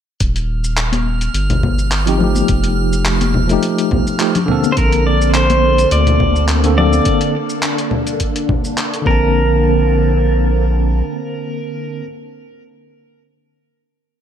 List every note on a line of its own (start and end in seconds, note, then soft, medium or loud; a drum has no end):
0.20 1.29 D#1 loud
0.20 7.08 F6 medium
0.20 kick loud
0.20 closed hi-hat medium
0.20 shaker medium
0.36 closed hi-hat soft
0.36 shaker soft
0.64 shaker medium
0.77 clap loud
0.77 closed hi-hat medium
0.77 shaker medium
0.92 closed hi-hat soft
0.92 high conga medium
0.92 shaker soft
1.21 closed hi-hat soft
1.21 shaker medium
1.34 2.43 G1 medium
1.34 closed hi-hat medium
1.34 shaker soft
1.50 closed hi-hat soft
1.50 low conga medium
1.50 shaker soft
1.63 kick medium
1.63 high conga medium
1.63 low conga medium
1.79 shaker medium
1.92 clap medium
1.92 closed hi-hat medium
1.92 shaker medium
2.06 2.17 F3 medium
2.06 2.18 C4 medium
2.06 2.19 D#4 medium
2.06 2.19 G4 medium
2.06 closed hi-hat soft
2.06 shaker soft
2.18 3.45 F3 medium
2.18 3.46 A3 medium
2.18 low conga medium
2.22 3.47 D#4 medium
2.22 3.48 G4 medium
2.35 high conga medium
2.35 shaker medium
2.48 3.57 F1 loud
2.48 kick loud
2.48 closed hi-hat medium
2.48 shaker medium
2.64 closed hi-hat soft
2.64 shaker soft
2.93 shaker medium
3.05 clap loud
3.05 closed hi-hat medium
3.05 shaker medium
3.21 closed hi-hat soft
3.21 high conga loud
3.21 shaker soft
3.34 low conga medium
3.47 4.16 F3 medium
3.47 4.17 A3 medium
3.47 closed hi-hat soft
3.47 shaker medium
3.51 4.18 D#4 medium
3.51 4.19 G4 medium
3.63 closed hi-hat medium
3.63 shaker medium
3.78 closed hi-hat soft
3.78 shaker soft
3.91 4.03 A1 medium
3.91 kick loud
3.91 high conga medium
3.91 low conga medium
4.07 shaker medium
4.18 4.36 F3 medium
4.18 4.36 A3 medium
4.18 4.37 D#4 medium
4.18 4.37 G4 medium
4.18 clap loud
4.18 closed hi-hat medium
4.18 shaker medium
4.35 closed hi-hat soft
4.35 low conga medium
4.35 shaker soft
4.46 6.59 D3 medium
4.46 6.60 A#3 medium
4.46 6.61 C4 medium
4.46 low conga medium
4.52 6.62 A4 loud
4.64 high conga medium
4.64 shaker medium
4.72 4.78 C5 medium
4.77 5.86 A#1 medium
4.77 9.02 D3 medium
4.77 9.02 A#3 medium
4.77 7.04 C4 medium
4.77 9.02 A4 medium
4.77 5.07 A#4 loud
4.77 kick loud
4.77 closed hi-hat medium
4.77 shaker medium
4.92 closed hi-hat soft
4.92 shaker soft
5.07 5.33 D5 medium
5.22 shaker medium
5.34 5.92 C5 loud
5.34 clap loud
5.34 closed hi-hat medium
5.34 shaker medium
5.50 closed hi-hat soft
5.50 high conga medium
5.50 shaker soft
5.78 closed hi-hat soft
5.78 shaker medium
5.91 7.00 D2 medium
5.91 6.45 D5 medium
5.91 closed hi-hat medium
5.91 shaker medium
6.07 closed hi-hat soft
6.07 low conga medium
6.07 shaker soft
6.20 kick loud
6.20 high conga medium
6.20 low conga medium
6.36 shaker medium
6.48 clap loud
6.48 closed hi-hat medium
6.48 shaker medium
6.63 6.74 D3 medium
6.63 6.75 A#3 medium
6.63 6.76 C4 medium
6.63 6.76 A4 medium
6.63 closed hi-hat soft
6.63 shaker soft
6.76 7.34 D3 medium
6.76 7.34 A#3 medium
6.76 7.35 C4 medium
6.76 7.35 A4 medium
6.76 7.31 D5 loud
6.76 low conga medium
6.93 high conga medium
6.93 shaker medium
7.05 9.04 D4 medium
7.05 kick loud
7.05 closed hi-hat medium
7.05 shaker medium
7.21 closed hi-hat soft
7.21 shaker soft
7.50 shaker medium
7.63 clap loud
7.63 closed hi-hat medium
7.63 shaker medium
7.78 closed hi-hat soft
7.78 shaker soft
7.91 low conga medium
8.07 closed hi-hat soft
8.07 shaker medium
8.20 kick medium
8.20 closed hi-hat medium
8.20 shaker medium
8.36 closed hi-hat soft
8.36 shaker soft
8.49 kick loud
8.49 low conga medium
8.64 shaker medium
8.78 clap medium
8.78 closed hi-hat medium
8.78 shaker medium
8.94 closed hi-hat soft
8.94 shaker soft
9.02 11.02 A#1 medium
9.02 12.00 D3 medium
9.02 12.03 A#3 medium
9.02 12.04 A5 medium
9.06 12.04 D3 medium
9.06 12.05 A#3 medium
9.06 12.04 C4 medium
9.06 12.06 C4 medium
9.06 12.05 A#4 medium
9.06 kick loud
9.11 12.09 A5 medium